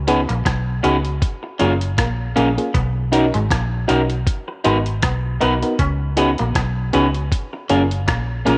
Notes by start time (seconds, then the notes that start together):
Already playing: C#2
0.07 B3 C#4 D#4 F#4 G#4 B4, closed hi-hat
0.29 A#1 A#3, closed hi-hat
0.45 B1 B3, kick, cross-stick, closed hi-hat
0.83 C#2 B3 C#4 D#4 F#4 G#4 B4, closed hi-hat
1.05 closed hi-hat
1.22 kick, closed hi-hat
1.43 muted clean electric guitar stroke
1.59 F#1 F#3 A#3 C#4 F4 G#4 A#4, closed hi-hat
1.81 closed hi-hat
1.98 A#1 A#3, kick, cross-stick, closed hi-hat
2.36 A#1 A#3 C#4 F4 G#4 A#4, closed hi-hat
2.57 A#3 C#4 F4 G#4, closed hi-hat
2.74 B1 B3, kick, closed hi-hat
3.12 C#4 D#4 F#4 A#4, closed hi-hat
3.34 G#1 G#3, closed hi-hat
3.51 A#1 A#3, kick, cross-stick, closed hi-hat
3.88 B1 B3 C#4 D#4 F#4 A#4, closed hi-hat
4.10 closed hi-hat
4.27 kick, closed hi-hat
4.48 muted clean electric guitar stroke
4.64 G#1 G#3 B3 D#4 F#4 A#4 B4, closed hi-hat
4.86 closed hi-hat
5.03 B1 B3, kick, cross-stick, closed hi-hat
5.41 B1 B3 D#4 F#4 A#4 B4, closed hi-hat
5.62 B3 D#4 F#4 A#4, closed hi-hat
5.79 C#2 C#4, kick, closed hi-hat
6.17 B3 C#4 D#4 F#4 G#4 B4, closed hi-hat
6.38 A#1 A#3, closed hi-hat
6.55 B1 B3, kick, cross-stick, closed hi-hat
6.93 C#2 B3 C#4 D#4 F#4 G#4 B4, closed hi-hat
7.14 closed hi-hat
7.32 kick, closed hi-hat
7.53 muted clean electric guitar stroke
7.69 F#1 F#3 A#3 C#4 F4 G#4 A#4, closed hi-hat
7.91 closed hi-hat
8.08 A#1 A#3, kick, cross-stick, closed hi-hat
8.45 A#1 A#3 C#4 F4 G#4 A#4, closed hi-hat